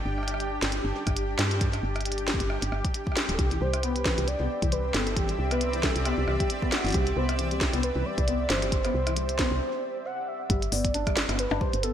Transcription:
Already playing: D4 G4
0.05 G1
0.18 cross-stick
0.23 cross-stick
0.28 cross-stick, closed hi-hat
0.34 cross-stick
0.40 closed hi-hat
0.62 G1, snare, closed hi-hat
0.72 closed hi-hat
0.85 G1
1.07 G1, kick, cross-stick, closed hi-hat
1.17 closed hi-hat
1.39 G2, snare
1.51 closed hi-hat
1.61 kick, closed hi-hat
1.73 cross-stick, closed hi-hat
1.83 G1
1.96 cross-stick, closed hi-hat
2.01 closed hi-hat
2.06 closed hi-hat
2.12 closed hi-hat
2.18 closed hi-hat
2.28 snare
2.34 kick
2.40 G1, closed hi-hat
2.50 cross-stick
2.62 G1, closed hi-hat
2.72 G1, cross-stick
2.85 kick, closed hi-hat
2.94 closed hi-hat
3.07 kick
3.12 cross-stick
3.17 snare
3.29 D1, closed hi-hat
3.34 A4
3.39 C2 C4 G4, kick, closed hi-hat
3.47 E3 E5, closed hi-hat
3.61 C2 G3 C5
3.74 D5, cross-stick, closed hi-hat
3.83 B3 B4, closed hi-hat
3.96 closed hi-hat
4.05 E3, kick, snare
4.18 C2 G3, closed hi-hat
4.28 D5, closed hi-hat
4.40 C2 B3
4.62 C2 E3, kick, closed hi-hat
4.72 G3 B4, closed hi-hat
4.94 G1 B3 A4, snare
5.07 closed hi-hat
5.17 E3 G4, kick, closed hi-hat
5.29 G3, closed hi-hat
5.39 C2
5.51 B3 B4, cross-stick, closed hi-hat
5.61 closed hi-hat
5.73 E3, closed hi-hat
5.83 G3 A4, kick, snare
5.96 C2, closed hi-hat
6.05 B3 G4, cross-stick, closed hi-hat
6.18 C2
6.28 C2 E3, cross-stick
6.40 G3, kick, closed hi-hat
6.50 closed hi-hat
6.62 B3, kick
6.72 F#4, cross-stick, snare
6.84 G1 E3, closed hi-hat
6.87 closed hi-hat
6.88 closed hi-hat
6.90 closed hi-hat
6.92 closed hi-hat
6.94 C2 G3 G4, kick, closed hi-hat
7.07 closed hi-hat
7.17 C2 B3 C5
7.29 cross-stick, closed hi-hat
7.39 E3, closed hi-hat
7.51 G3, closed hi-hat
7.61 kick, snare
7.73 C2 B3, closed hi-hat
7.83 B4, closed hi-hat
7.96 C2 E3
8.05 G3 D5
8.18 C2, kick, closed hi-hat
8.28 B3, closed hi-hat
8.50 G1 E3 C5, snare
8.62 G3, closed hi-hat
8.72 kick, closed hi-hat
8.85 B3, cross-stick, closed hi-hat
8.94 C2
9.07 E3, cross-stick, closed hi-hat
9.17 G3, closed hi-hat
9.29 closed hi-hat
9.39 B3, kick, snare
9.51 C2
10.06 F#5
10.28 E5
10.50 G1 G3, kick, closed hi-hat
10.62 closed hi-hat
10.72 G1 B3 D5, open hi-hat
10.85 kick, closed hi-hat
10.94 D4, closed hi-hat
11.07 G3, kick, cross-stick, closed hi-hat
11.17 snare
11.29 G1 B3, cross-stick, closed hi-hat
11.39 B4, closed hi-hat
11.51 G1 D4, percussion blips
11.61 G3 C5, kick
11.73 G1, closed hi-hat
11.83 B3 A4, closed hi-hat

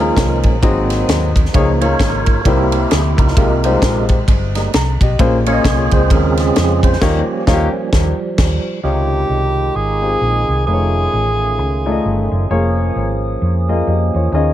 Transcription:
Already playing: D#3 F3 G#3 C#4 F4 A#4
0.00 A#3 D#4 F4 G#4 A#4
0.17 C2, kick, snare, ride bell
0.43 A#1, kick, ride bell
0.61 G#1 G#2 F#3 A#3 C4 D#4 F#4 G#4 D#5, kick, ride bell
0.90 snare, ride bell
1.08 D#2, snare, ride bell
1.36 kick, ride bell
1.45 snare
1.53 C#2 C#3 F3 A#3 D#4 F4 G#4 C#5, kick, ride bell
1.81 A#3 D#4 F4 G#4 A#4 C#5, ride bell
1.99 G#1, kick, snare, ride bell
2.26 kick, ride bell
2.44 C2 C3 G3 A#3 C4 E4 G4 A#4 C5, kick, ride bell
2.72 ride bell
2.90 D2 G#4, snare, ride bell
3.17 C#2 D#4 F4 A#4, kick, ride bell
3.28 snare
3.37 C2 C3 G#3 A#3 D#4 F4 G4 A#4, kick, ride bell
3.64 G3 D#4 F4 G4 C5, ride bell
3.70 G#3
3.82 A#1, kick, snare, ride bell
4.09 kick, ride bell
4.28 G1, kick, ride bell
4.55 G3 G#3 A#3 D#4, snare, ride bell
4.73 C2 A#5, snare, ride bell
5.01 B1 G4 D#5, kick, ride bell
5.19 A#1 A#2 A#3 C#4 F4 G#4 C5, kick, ride bell
5.46 A#3 C#4 F4 G#4 C#5, ride bell
5.53 D#5
5.64 C2, kick, snare, ride bell
5.91 C#2 C#3 G#3 C4 C5, kick, ride bell
6.10 D#2 C#4 F4 A#4, kick, ride bell
6.37 C4 C#4 G#4, snare, ride bell
6.56 F2, snare, ride bell
6.83 C5, kick, ride bell
6.93 snare
7.01 D#2 D#3 F3 G3 A#3 C#4 D#4 F4 G4 C#5, kick, snare, crash
7.47 D#2 A#3 D#4 F4 C#5, kick, snare
7.53 G4
7.93 D#2, kick, snare
8.38 D#2, kick, snare, crash
8.83 C#2 C3 C#3 D#3 G#3 D#4 F4 G4 C#5
9.29 C2
9.75 G#1 G#4
10.02 C4 D#4 F4 G4
10.08 G#4
10.21 A#1
10.48 C2
10.66 F1 A3 C#4 D#4 F4 G#4 B4
10.73 C#5
11.13 A1
11.59 C#2
11.86 A3 D#4 F4 D5
11.92 D#5
12.05 G1
12.32 F#1
12.50 F1 F3 A#3 F4 G#4 C#5
12.96 G#1
13.42 F2
13.69 A#3 F4 G#4 D#5
13.87 F2 G4 D#5
14.14 E2 F4 C#5
14.32 D#2 D#3 C#4 D#4 F4 G#4 D#5

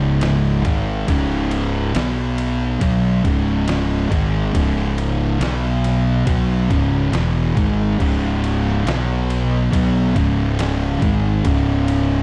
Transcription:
Already playing: C#1 C#2 G#2 C#3
0.21 snare, ride
0.65 G#1 G#2 D#3 G#3, kick, ride
1.08 C#1 C#2 G#2 C#3, kick, ride
1.51 ride
1.94 B1 B2 F#3 B3, snare, ride
2.38 ride
2.80 B1 B2 F#3 B3, kick, ride
3.23 C#1 C#2 G#2 C#3, kick, ride
3.68 snare, ride
4.10 G#1 G#2 D#3 G#3, kick, ride
4.54 C#1 C#2 G#2 C#3, kick, ride
4.98 ride
5.40 B1 B2 F#3 B3, snare, ride
5.84 snare, ride
6.26 B1 B2 F#3 B3, kick, ride
6.69 C#1 C#2 G#2 C#3, kick, ride
7.12 E1 E2 B2 E3, snare, ride
7.55 G#1 G#2 D#3 G#3, kick, ride
7.98 C#1 C#2 G#2 C#3, kick, crash
8.44 ride
8.67 snare
8.85 B1 B2 F#3 B3, snare, ride
9.30 ride
9.72 B1 B2 F#3 B3, kick, ride
10.15 C#1 C#2 G#2 C#3, kick, ride
10.59 snare, ride
11.01 G#1 G#2 D#3 G#3, kick, ride
11.44 C#1 C#2 G#2 C#3, kick, ride
11.88 ride

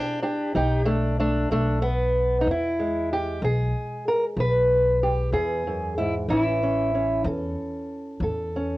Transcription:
Already playing: E3 D4 G4
0.23 D4 G4
0.55 B1 B2 D#4 G4
0.86 A3 D4
1.20 A3 D4
1.51 B1 A3 D4
1.82 B3
2.41 D#4
2.46 E2
2.51 E4
2.79 G#3
3.13 G4
3.42 B1 E3 G#4
4.08 A#4
4.37 B1 E2 B4
5.03 G4
5.32 E2 G#4
5.67 F#2
5.98 G#2 E4
6.28 A1 A2 E3 C#4 E4
6.63 C#4
6.95 C#4
7.24 E2 E3 A4
8.20 E2 A2 A4
8.56 C#4

